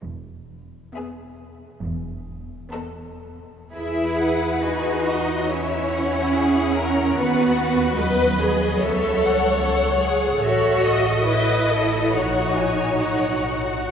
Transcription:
<<
  \new Staff \with { instrumentName = "Violin section" } { \time 4/4 \key e \major \tempo 4 = 70 r4 e''4 r4 dis''4 | e''8 fis''8 gis''8 dis''8 e''8 fis''4. | fis''4 dis''4 e''8 fis''8 fis''4 | e''4 e''4 fis''8 gis''8 fis''4 | }
  \new Staff \with { instrumentName = "Violin section" } { \time 4/4 \key e \major r4 gis'4 r4 a'4 | b'2 cis''4 gis'8 ais'8 | b'8 b'4. cis''2 | cis''8 dis''4. cis''2 | }
  \new Staff \with { instrumentName = "Viola section" } { \time 4/4 \key e \major r4 b4 r4 b4 | gis'4 fis'4 e'2 | fis'4 b'8 gis'8 a'4 a'8 gis'8 | a'4 b'8 a'8 fis'4 fis'4 | }
  \new Staff \with { instrumentName = "Cello section" } { \time 4/4 \key e \major e,4 r4 e,4 r4 | e'4 dis'4 cis'2 | b4 fis2~ fis8 r8 | fis'4 e'4 dis'2 | }
  \new Staff \with { instrumentName = "Double bass section" } { \clef bass \time 4/4 \key e \major e,,4 r4 e,,4 r4 | e,1 | dis,2 cis,2 | a,,2 ais,,4 b,,4 | }
>>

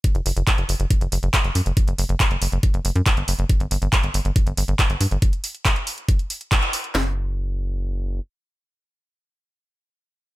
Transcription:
<<
  \new Staff \with { instrumentName = "Analog synth bass" } { \clef bass \time 4/4 \key g \lydian \tempo 4 = 139 r16 fis,,16 fis,,16 fis,,16 r16 fis,,16 fis,,16 fis,,16 r16 fis,,16 fis,,16 fis,,16 r16 fis,,16 fis,16 fis,,16 | r16 fis,,16 fis,,16 fis,,16 r16 fis,,16 fis,,16 fis,,16 r16 fis,,16 fis,,16 fis,16 r16 g,,16 fis,,16 fis,,16 | r16 g,,16 g,,16 g,,16 r16 g,,16 g,,16 g,,16 r16 g,,16 g,,16 g,,16 r16 g,,16 g,16 g,,16 | r1 |
fis,,2. r4 | r1 | }
  \new DrumStaff \with { instrumentName = "Drums" } \drummode { \time 4/4 <hh bd>16 hh16 hho16 hh16 <hc hh bd>16 hh16 hho16 hh16 <hh bd>16 hh16 hho16 hh16 <hc hh bd>16 hh16 hho16 hh16 | <hh bd>16 hh16 hho16 hh16 <hc hh bd>16 hh16 hho16 hh16 <hh bd>16 hh16 hho16 hh16 <hc hh bd>16 hh16 hho8 | <hh bd>16 hh16 hho16 hh16 <hc hh bd>16 hh16 hho16 hh16 <hh bd>16 hh16 hho16 hh16 <hc hh bd>16 hh16 hho16 hh16 | <hh bd>16 hh16 hho16 hh16 <hc hh bd>16 hh16 hho16 hh16 <hh bd>16 hh16 hho16 hh16 <hc hh bd>16 hh16 hho16 hh16 |
<hc sn>4 r4 r4 r4 | r4 r4 r4 r4 | }
>>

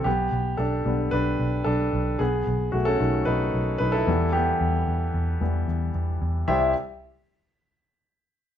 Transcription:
<<
  \new Staff \with { instrumentName = "Grand piano" } { \time 4/4 \key c \major \tempo 4 = 112 <b g'>4 <d' a'>4 <d' b'>4 <d' a'>4 | <b aes'>4 <a fis'>16 <des' a'>8. <dis' b'>4 <dis' b'>16 <e' a'>8. | <b g'>2. r4 | <e' g' c'' e''>8 r2. r8 | }
  \new Staff \with { instrumentName = "Grand piano" } { \clef bass \time 4/4 \key c \major r4. <d g b>2~ <d g b>8 | r4. <dis a des'>4. r8 <e g b>8 | r2 <e g b>8 r4. | c,8 r2. r8 | }
  \new Staff \with { instrumentName = "Picked electric bass" } { \clef bass \time 4/4 \key c \major b,,8 b,,8 b,,8 b,,8 b,,8 b,,8 b,,8 b,,8 | b,,8 b,,8 b,,8 b,,8 b,,8 b,,8 b,,8 e,8~ | e,8 e,8 e,8 e,8 e,8 e,8 e,8 e,8 | c,8 r2. r8 | }
>>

